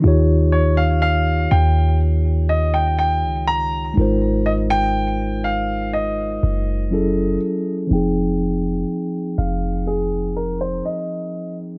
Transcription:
<<
  \new Staff \with { instrumentName = "Grand piano" } { \time 4/4 \key f \minor \tempo 4 = 61 r8 des''16 f''16 f''8 g''8 r8 ees''16 g''16 g''8 bes''8 | r8 ees''16 g''8. f''8 ees''4. r8 | r4. f''8 aes'8 bes'16 c''16 ees''8. r16 | }
  \new Staff \with { instrumentName = "Tine electric piano" } { \time 4/4 \key f \minor <ees ees' f' g' des''>1 | <aes ees' f' bes' c''>2. <ges des' fes' aes' a'>4 | <f c' ees' aes' g''>1 | }
  \new Staff \with { instrumentName = "808-style bass" } { \clef bass \time 4/4 \key f \minor ees,4. ees,4.~ ees,16 des,8. | aes,,2~ aes,,8 ges,,4 r8 | f,,4 r8 f,,4. r4 | }
>>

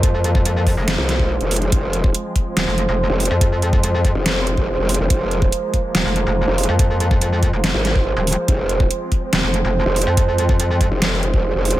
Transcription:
<<
  \new Staff \with { instrumentName = "Brass ensemble" } { \time 4/4 \key f \minor \tempo 4 = 142 <aes f' c''>4.~ <aes f' c''>16 <aes f' c''>2~ <aes f' c''>16~ | <aes f' c''>4.~ <aes f' c''>16 <aes f' c''>2~ <aes f' c''>16~ | <aes f' c''>4.~ <aes f' c''>16 <aes f' c''>2~ <aes f' c''>16~ | <aes f' c''>4.~ <aes f' c''>16 <aes f' c''>2~ <aes f' c''>16~ |
<aes f' c''>4.~ <aes f' c''>16 <aes f' c''>2~ <aes f' c''>16~ | <aes f' c''>4.~ <aes f' c''>16 <aes f' c''>2~ <aes f' c''>16~ | <aes f' c''>4.~ <aes f' c''>16 <aes f' c''>2~ <aes f' c''>16 | }
  \new Staff \with { instrumentName = "String section" } { \time 4/4 \key f \minor << { bes1 | c'1~ | c'1 | bes1~ |
bes1 | c'1~ | c'1 | } \\ { <f aes>1~ | <f aes>1~ | <f aes>1~ | <f aes>1~ |
<f aes>1~ | <f aes>1~ | <f aes>1 | } >> }
  \new Staff \with { instrumentName = "Wobble bass" } { \clef bass \time 4/4 \key f \minor r2 r16 c,4 f,,8. | f,,4 r2 r16 f,,8 r16 | r4. r16 f,,4 f,,8 f,,8 f,,16 | f,,4 r2 r16 f,,8 r16 |
r2 r16 aes,,4 r8. | f,,4 r2 r16 f,,8 r16 | r4. r16 f,,4 f,,8 f,,8 f,,16 | }
  \new Staff \with { instrumentName = "Wobble bass" } { \clef bass \time 4/4 \key f \minor f,4.~ f,16 f,,8 r4. r16 | r2 ees,,16 f,,8 f,,8 r8 f,16~ | f,4.~ f,16 r2 r16 | r2 ees,,16 f,,8 f,,8 r8 f,16~ |
f,4.~ f,16 f,,8 r4 ees,,8 r16 | r2 ees,,16 f,,8 f,,8 r8 f,16~ | f,4.~ f,16 r2 r16 | }
  \new DrumStaff \with { instrumentName = "Drums" } \drummode { \time 4/4 <hh bd>8 hh16 bd16 hh8 <hho bd>8 <hh sn>8 <hh sn>16 bd16 r16 hh16 hho32 hh32 hh16 | <hh bd>8 hh16 bd16 hh8 <hh bd>8 <hh sn>8 hh8 r8 hho32 hh16. | <hh bd>8 hh16 bd16 hh8 <hh bd>8 <hh sn>8 hh16 bd16 r8 hho32 hh16. | <hh bd>8 hh16 bd16 hh8 <hh bd>8 <hh sn>8 hh8 r8 hho32 hh16. |
<hh bd>8 hh16 bd16 hh8 <hh bd>8 <hh sn>8 <hh sn>16 bd16 r8 hho32 hh16. | <hh bd>8 hh16 bd16 hh8 <hh bd>8 <hh sn>8 hh8 r8 hho32 hh16. | <hh bd>8 hh16 bd16 hh8 <hh bd>8 <hh sn>8 hh16 bd16 r8 hho32 hh16. | }
>>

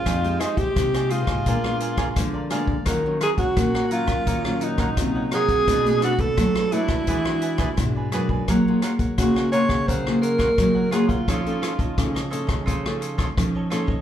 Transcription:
<<
  \new Staff \with { instrumentName = "Cavaquinho" } { \time 4/4 \key f \phrygian \tempo 4 = 86 <f' aes' c'' ees''>8 <f' aes' c'' ees''>16 <c'' ees''>8 <aes' c'' ees''>16 <f' aes' c'' ees''>16 <aes' c'' ees''>16 <aes' bes' d'' f''>8 <aes' bes' d'' f''>16 <aes' bes' d'' f''>16 r16 <bes' d'' f''>16 <aes' bes' d'' f''>16 <bes' d'' f''>16 | <ees' bes' des'' ges''>8 <ees' bes' des'' ges''>16 <bes' des'' ges''>8 <bes' des'' ges''>16 <ees' bes' des'' ges''>16 <bes' des'' ges''>16 <ees' bes' des''>8 <ees' bes' des'' ges''>16 <ees' bes' des'' ges''>16 r16 <bes' des'' ges''>16 <ees' bes' des'' ges''>16 <bes' des'' ges''>16 | <d' b' d''>8 <d' a' b' d''>16 <a' b' d''>8 <a' b' d''>16 <d' a' b' d''>16 <a' b' d''>16 <e' gis' b' d''>8 <e' gis' b' d''>16 <e' gis' b' d''>16 r16 <gis' b' d''>16 <e' gis' b' d''>16 <gis' b' d''>16 | <bes' des'' ges''>8 <f' bes' des'' ges''>16 <bes' des'' ges''>8 <bes' des'' ges''>16 <f' bes' des'' ges''>16 <bes' des'' ges''>16 <bes' ges''>8 <f' bes' des'' ges''>16 <f' bes' des'' ges''>16 r16 <bes' des'' ges''>16 <f' bes' des'' ges''>16 <bes' des'' ges''>16 |
<f' a' cis'' ees''>8 <f' a' cis'' ees''>16 <a' cis'' ees''>8 <a' cis'' ees''>16 <f' a' cis'' ees''>16 <a' cis'' ees''>16 <f' a' cis'' ees''>8 <f' a' cis'' ees''>16 <f' a' cis'' ees''>16 r16 <a' cis'' ees''>16 <f' a' cis'' ees''>16 <a' cis'' ees''>16 | }
  \new Staff \with { instrumentName = "Alto saxophone" } { \time 4/4 \key f \phrygian f'8 ees'16 g'8. f'2 r8 | r8 aes'16 ges'8. f'4 ees'4 aes'8~ | aes'8 fis'16 a'8. e'2 r8 | r4 ges'8 des''8 c''8 bes'4 aes'16 f'16~ |
f'4.~ f'16 r2 r16 | }
  \new Staff \with { instrumentName = "Nylon-string guitar" } { \time 4/4 \key f \phrygian << { <aes ees' g'>16 <aes ees' g'>8. <aes ees' g'>8 <aes ees' g'>8 <aes ces' d'>16 <aes ces' d'>8. <aes ces' d'>16 r16 <aes ces' d'>16 r16 | <ges des' f'>16 <ges des' f'>8. <ges des' f'>16 r16 <ges des' f'>8. <ges des' f'>8. <ges des' f'>8 <ges f'>8 | <a d' fis'>16 <a d' fis'>8. <a d' fis'>8 <a d' fis'>8 <gis d' fis'>16 <gis d' fis'>8. <gis d' fis'>8 <gis d' fis'>8 | <bes f' aes'>16 <bes f' aes'>8. <bes f' aes'>8 <bes f' aes'>8 r16 <bes f' aes'>8. <bes f' aes'>16 r16 <bes f' aes'>16 r16 |
<cis' ees' a'>16 <cis' ees' a'>8. <cis' ees' a'>16 r16 <cis' ees' a'>8 r16 <cis' ees' a'>8. <cis' ees' a'>8 <cis' ees' a'>16 r16 | } \\ { f4 c4 bes,4 f4 | ees4 bes,4 ees4 bes,4 | b,4 fis4 e4 b,4 | ges4 des4 ges4 des4 |
f4 f4 f4 f4 | } >> }
  \new Staff \with { instrumentName = "Nylon-string guitar" } { \clef bass \time 4/4 \key f \phrygian f,8 r8 c8. aes,16 bes,4 d4 | ees8 r8 bes,8. bes,16 bes,4 c4 | b,8 r8 fis8. d16 e4 gis,8 fis,8 | ges8 r8 des8. des16 des4 ges4 |
f8 r8 cis8. cis16 cis4 f4 | }
  \new DrumStaff \with { instrumentName = "Drums" } \drummode { \time 4/4 <hh bd ss>16 hh16 <hh ss>16 <hh bd>16 <hh bd ss>16 <hh ss>16 hh16 <hh bd ss>16 <hh bd>16 ss16 hh16 <hh bd ss>16 <hh bd ss>8 <hh ss>16 bd16 | <hh bd ss>8 <hh ss>16 <hh bd>16 <hh bd ss>16 ss16 hh16 <hh bd ss>16 <hh bd>16 ss16 hh16 <hh bd ss>16 <hh bd ss>8 <hh ss>16 <hh bd>16 | <hh bd ss>16 hh16 <hh ss>16 <hh bd>16 <hh bd ss>16 <hh ss>16 hh16 <hh bd ss>16 <hh bd>16 ss16 hh16 <hh bd ss>16 <hh bd ss>8 <hh ss>16 bd16 | <hh bd ss>8 <hh ss>16 <hh bd>16 <hh bd ss>16 ss16 hh16 <hh bd ss>16 <hh bd>16 ss16 hh16 <hh bd ss>16 <hh bd ss>8 <hh ss>16 <hh bd>16 |
<hh bd ss>16 hh16 <hh ss>16 <hh bd>16 <hh bd ss>16 <hh ss>16 hh16 <hh bd ss>16 <hh bd>16 ss16 hh16 <hh bd ss>16 <hh bd ss>8 <hh ss>16 bd16 | }
>>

